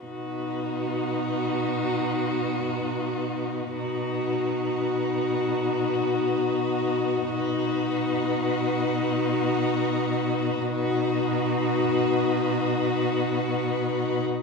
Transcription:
0.02 3.71 B2 soft
0.02 3.70 D#4 soft
0.02 3.70 F#4 soft
0.02 3.71 B4 soft
3.74 7.26 B2 soft
3.74 7.26 D#4 soft
3.74 7.26 F#4 soft
3.74 7.26 B4 soft
7.29 10.63 B2 soft
7.29 10.63 D#4 soft
7.29 10.63 F#4 soft
7.29 10.63 B4 soft
10.67 14.23 B2 soft
10.67 14.23 D#4 soft
10.67 14.24 F#4 soft
10.67 14.23 B4 soft

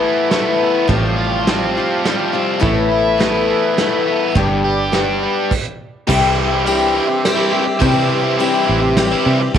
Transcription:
0.00 0.62 A2 medium
0.00 0.30 E3 medium
0.00 0.89 E3 medium
0.00 0.32 A3 medium
0.00 0.32 B3 medium
0.00 0.58 B3 medium
0.00 0.32 E4 medium
0.00 0.89 E4 medium
0.00 0.86 A4 medium
0.00 0.86 E5 medium
0.00 0.87 B5 medium
0.30 0.89 E3 medium
0.30 2.02 A3 medium
0.30 0.89 A3 medium
0.30 0.89 B3 medium
0.30 0.89 E4 medium
0.30 snare medium
0.30 closed hi-hat medium
0.59 0.89 B3 medium
0.88 1.79 A1 medium
0.88 1.46 A2 medium
0.88 2.33 A2 medium
0.88 1.46 F3 medium
0.88 1.47 G3 medium
0.88 1.47 C4 medium
0.88 1.47 F4 medium
0.88 2.61 G4 medium
0.88 2.61 F5 medium
0.88 2.61 A5 medium
0.88 kick loud
0.88 closed hi-hat medium
1.16 2.62 F4 medium
1.47 1.76 F3 medium
1.47 1.76 G3 medium
1.47 2.31 C4 medium
1.47 1.76 C4 medium
1.47 1.76 F4 medium
1.47 snare medium
1.47 closed hi-hat medium
1.76 2.63 F3 medium
1.76 2.05 G3 soft
1.76 2.06 C4 soft
1.76 2.05 F4 soft
2.03 2.34 F3 medium
2.03 2.62 G3 medium
2.03 2.34 G3 medium
2.03 snare medium
2.03 closed hi-hat medium
2.07 2.33 C4 medium
2.07 2.32 F4 medium
2.33 2.61 G3 soft
2.33 2.62 C4 medium
2.33 2.60 C4 soft
2.33 2.61 F4 medium
2.60 3.52 A1 medium
2.60 3.19 A2 medium
2.60 4.07 A2 medium
2.60 3.16 E3 medium
2.60 3.18 A3 medium
2.60 3.19 B3 medium
2.60 3.20 E4 medium
2.60 4.34 A4 medium
2.60 4.34 E5 medium
2.60 5.48 B5 medium
2.60 kick loud
2.60 closed hi-hat medium
2.92 4.36 E4 medium
3.18 3.76 E3 medium
3.18 3.77 A3 medium
3.18 4.05 B3 medium
3.18 3.78 B3 medium
3.18 3.79 E4 medium
3.18 snare medium
3.18 closed hi-hat medium
3.50 4.36 E3 medium
3.77 4.36 E3 medium
3.77 4.36 A3 medium
3.77 4.35 B3 medium
3.77 4.36 E4 medium
3.77 snare medium
3.77 closed hi-hat medium
4.07 4.36 B3 medium
4.35 5.25 G1 loud
4.35 5.51 G2 medium
4.35 4.93 G2 medium
4.35 4.94 D3 medium
4.35 4.91 G3 medium
4.35 4.91 B3 medium
4.35 4.92 D4 medium
4.35 4.93 G4 medium
4.35 5.51 G4 medium
4.35 5.51 D5 medium
4.35 kick loud
4.35 closed hi-hat medium
4.65 5.52 G4 medium
4.92 5.51 G3 medium
4.92 5.51 B3 medium
4.92 5.52 D4 medium
4.92 5.52 G4 medium
4.92 snare medium
4.92 closed hi-hat medium
5.23 5.52 G3 medium
5.51 kick medium
5.51 crash medium
6.07 6.99 C2 medium
6.07 6.66 C3 medium
6.07 6.65 C3 medium
6.07 6.65 E3 medium
6.07 6.53 G3 medium
6.07 6.65 G3 medium
6.07 6.52 C4 loud
6.07 6.66 C4 medium
6.07 6.51 E4 medium
6.07 6.66 G4 medium
6.07 9.51 G4 medium
6.07 9.52 E5 medium
6.07 9.51 C6 medium
6.07 kick loud
6.07 crash loud
6.51 6.65 G3 soft
6.51 6.65 C4 medium
6.51 6.66 E4 medium
6.65 7.24 C3 medium
6.65 6.93 E3 medium
6.65 7.24 E3 medium
6.65 6.94 G3 loud
6.65 7.25 G3 medium
6.65 6.95 C4 medium
6.65 7.25 C4 medium
6.65 6.96 E4 medium
6.65 7.25 G4 medium
6.65 ride medium
6.94 7.08 E3 medium
6.94 7.07 G3 medium
6.94 7.07 C4 medium
6.94 7.07 E4 medium
7.08 muted overdriven electric guitar stroke soft
7.25 7.54 E3 medium
7.25 7.53 G3 medium
7.25 7.53 C4 medium
7.25 7.51 G4 medium
7.25 snare medium
7.25 ride medium
7.36 7.50 G3 medium
7.36 7.50 C4 medium
7.36 7.52 E4 medium
7.50 7.65 E3 medium
7.50 7.65 G3 medium
7.50 7.65 C4 medium
7.50 7.64 E4 medium
7.50 7.80 G4 soft
7.54 7.80 G3 soft
7.54 7.80 C4 soft
7.65 muted overdriven electric guitar stroke soft
7.79 8.36 C3 medium
7.79 8.39 C3 medium
7.79 8.49 C3 medium
7.79 8.37 E3 medium
7.79 8.38 E3 medium
7.79 8.38 G3 medium
7.79 8.25 G3 loud
7.79 8.39 C4 medium
7.79 8.24 C4 loud
7.79 8.23 E4 loud
7.79 8.40 G4 medium
7.79 kick loud
7.79 ride medium
8.24 8.38 G3 medium
8.24 8.38 C4 medium
8.24 8.38 E4 medium
8.38 8.96 C3 medium
8.38 8.64 E3 medium
8.38 8.96 E3 medium
8.38 8.65 G3 medium
8.38 8.96 G3 medium
8.38 8.66 C4 medium
8.38 8.96 C4 medium
8.38 8.66 E4 loud
8.38 8.98 G4 medium
8.38 ride medium
8.65 9.14 A1 medium
8.65 8.80 E3 medium
8.65 8.81 G3 medium
8.65 8.80 C4 medium
8.65 8.80 E4 medium
8.81 muted overdriven electric guitar stroke soft
8.97 9.55 E3 medium
8.97 9.55 G3 medium
8.97 9.55 C4 medium
8.97 9.56 G4 medium
8.97 snare medium
8.97 ride medium
9.11 9.25 G3 medium
9.11 9.25 C4 medium
9.11 9.26 E4 medium
9.26 9.48 C3 medium
9.26 9.41 E3 medium
9.26 9.41 G3 medium
9.26 9.40 C4 medium
9.26 9.40 E4 medium
9.41 muted overdriven electric guitar stroke soft
9.54 9.58 D2 medium
9.54 9.58 F#4 medium
9.54 9.58 D5 medium
9.54 9.58 A5 medium
9.54 kick loud
9.54 ride medium

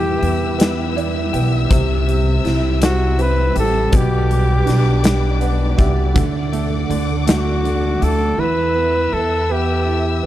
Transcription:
0.00 0.19 E2 medium
0.00 0.20 E3 medium
0.00 2.99 G3 medium
0.00 0.56 B3 medium
0.00 1.70 B3 medium
0.00 0.96 G4 medium
0.00 1.69 B4 medium
0.00 3.89 E5 medium
0.00 3.89 E6 medium
0.21 1.30 E2 medium
0.21 0.96 E3 medium
0.21 0.96 E4 medium
0.21 closed hi-hat soft
0.58 1.32 B3 medium
0.58 1.33 G4 medium
0.58 snare loud
0.58 closed hi-hat medium
0.96 1.69 E3 medium
0.96 2.44 E4 medium
0.96 1.14 D5 medium
0.96 closed hi-hat soft
1.15 1.32 E5 medium
1.33 1.68 B1 medium
1.33 1.70 B3 medium
1.33 3.55 G4 medium
1.33 1.68 G5 medium
1.33 closed hi-hat soft
1.69 2.41 C2 loud
1.69 3.89 C3 medium
1.69 3.91 C4 medium
1.69 2.06 C4 medium
1.69 kick loud
1.69 closed hi-hat loud
2.07 2.79 G3 medium
2.07 3.92 C4 medium
2.07 closed hi-hat medium
2.44 3.52 C2 medium
2.44 3.18 E4 medium
2.44 3.89 E4 medium
2.44 snare soft
2.44 closed hi-hat soft
2.81 3.54 G3 medium
2.81 3.23 F#4 medium
2.81 snare loud
2.81 closed hi-hat medium
3.19 3.91 C4 medium
3.19 4.01 E4 medium
3.19 3.57 B4 loud
3.19 closed hi-hat soft
3.55 3.91 A1 medium
3.55 3.92 G3 medium
3.55 5.03 G4 medium
3.55 3.98 A4 loud
3.55 closed hi-hat soft
3.92 4.64 B1 loud
3.92 6.11 B2 medium
3.92 4.28 B3 medium
3.92 6.14 B4 medium
3.92 8.34 D5 medium
3.92 6.14 D6 medium
3.92 kick loud
3.92 closed hi-hat medium
3.96 5.43 G4 medium
4.29 5.02 G3 medium
4.29 6.15 B3 medium
4.29 closed hi-hat medium
4.66 5.75 B1 medium
4.66 6.11 D4 medium
4.66 5.42 D4 medium
4.66 snare soft
4.66 closed hi-hat soft
5.04 5.76 G3 medium
5.04 5.78 G4 medium
5.04 snare loud
5.04 closed hi-hat medium
5.41 6.13 B3 medium
5.41 6.90 D4 medium
5.41 5.76 F#5 medium
5.41 closed hi-hat soft
5.77 6.14 C2 medium
5.77 6.14 G3 medium
5.77 6.23 G4 medium
5.77 6.13 E5 medium
5.77 kick medium
5.77 closed hi-hat soft
6.14 6.86 D2 medium
6.14 6.88 D3 medium
6.14 6.52 A3 medium
6.14 8.36 A4 medium
6.14 8.36 F#5 medium
6.14 8.36 D6 medium
6.14 kick loud
6.14 closed hi-hat medium
6.52 7.25 A3 medium
6.52 8.46 A3 medium
6.52 closed hi-hat medium
6.89 7.97 D2 medium
6.89 7.62 D3 medium
6.89 7.64 D4 medium
6.89 closed hi-hat soft
7.26 8.00 A3 medium
7.26 8.01 F#4 medium
7.26 8.05 F#4 medium
7.26 snare loud
7.26 closed hi-hat medium
7.64 8.36 D3 soft
7.64 8.46 D4 medium
7.64 closed hi-hat soft
8.01 8.36 D2 medium
8.01 8.37 A3 medium
8.01 8.46 F#4 medium
8.01 8.41 A4 loud
8.01 closed hi-hat soft
8.38 9.08 E2 medium
8.38 10.26 E3 medium
8.38 9.15 B4 loud
8.38 10.26 B4 medium
8.38 10.26 E5 medium
8.38 10.26 E6 medium
8.75 9.48 B3 medium
9.12 10.19 E2 loud
9.12 9.85 E4 medium
9.12 9.53 A4 medium
9.49 10.22 B3 medium
9.49 10.26 G4 medium
9.87 10.26 E4 medium

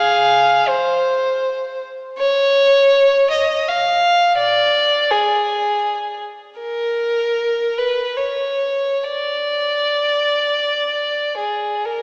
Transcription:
0.00 0.62 G#4 medium
0.00 0.66 F5 medium
0.68 1.82 C5 medium
2.18 3.25 C#5 medium
3.30 3.66 D#5 medium
3.68 4.38 F5 medium
4.38 5.08 D5 medium
5.11 6.21 G#4 medium
6.60 7.75 A#4 medium
7.78 8.19 B4 medium
8.17 9.06 C#5 soft
9.04 11.36 D5 medium
11.37 11.83 G#4 soft
11.85 12.02 A#4 medium

